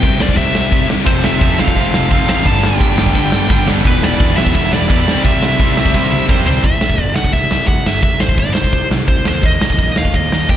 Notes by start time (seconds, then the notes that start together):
Already playing: G5
0.02 C2 C3 G3 C4, kick, crash
0.18 C2 C3 G3 C4 D5, snare
0.29 kick
0.35 C2 C3 G3 C4 E5, kick, crash
0.55 C2, snare
0.70 C2 C3 G3 C4, kick, crash
0.87 C2 C3 G3 C4, snare
1.05 F1 F2 C3 F3 A3 C4 C5, kick, crash
1.24 E5, snare
1.39 F1 F2 C3 F3 A3 C4, kick, crash
1.58 F1 F2 C3 F3 A3 C4 F5, snare
1.68 kick
1.75 F1 F2 C3 F3 A3 C4, kick, crash
1.93 F1, snare
2.09 F1 F2 C3 F3 A3 C4, kick, crash
2.26 F2 C3 F3 A3 C4, snare
2.30 A1 F5
2.43 G1 G2 D3 G3 B3 D4 A5, kick, crash
2.63 G5, snare
2.79 G1 G2 D3 G3 B3 D4, kick, crash
2.98 G1 G2 D3 G3 B3 D4, snare
3.06 kick
3.14 G1 G2 D3 G3 B3 D4, kick, crash
3.32 G1, snare
3.49 G1 G2 D3 G3 B3 D4, kick, crash
3.66 G1 G2 D3 G3 B3 D4, snare
3.82 E1 E2 B2 E3 G3 B3 E4, kick, crash
3.87 B4
4.03 D5, snare
4.18 E1 E2 B2 E3 G3 B3 E4, kick, crash
4.35 E1 E2 B2 E3 G3 B3 E4 E5, snare
4.46 kick
4.53 E1 E2 B2 E3 G3 B3 E4 E5, kick, crash
4.72 E1 D5, snare
4.88 E1 E2 B2 E3 G3 B3 E4, kick, crash
5.06 C2 C3 G3 C4 E4, snare
5.24 C2 C3 G3 C4 E4 E5, kick, crash
5.43 snare
5.60 C2 C3 G3 C4 E4, kick, crash
5.77 C2 C3 G3 C4 E4, snare
5.86 kick
5.94 C2 C3 G3 C4 E4, kick, snare
6.12 C2, high tom
6.29 C2 C3 G3 C4 E4 C5, kick, mid tom
6.46 C2 C3 G3 C4 E4 C5, floor tom
6.64 C2 E5, kick, ride
6.81 A1, snare
6.90 kick
6.98 G1, kick, ride
7.16 C2 F#5, snare
7.25 kick
7.33 C2 E5, kick, ride
7.51 C2, snare
7.67 C2 F#5, kick, ride
7.85 G1 E5, snare
8.03 C2 E5, kick, ride
8.20 A1 C5, snare
8.29 kick
8.37 G1 D5, kick, ride
8.54 C2 C5, snare
8.64 kick
8.73 C2, kick, ride
8.90 C2, snare
9.08 C2 C5, kick, ride
9.25 D#2 C5, snare
9.43 D#2 D#5, kick, ride
9.61 C2, snare
9.70 kick
9.79 A#1, kick, ride
9.95 D#2 F5, snare
10.05 kick
10.14 D#2 D#5, kick, ride
10.31 D#2, snare
10.49 D#2 G5, kick, ride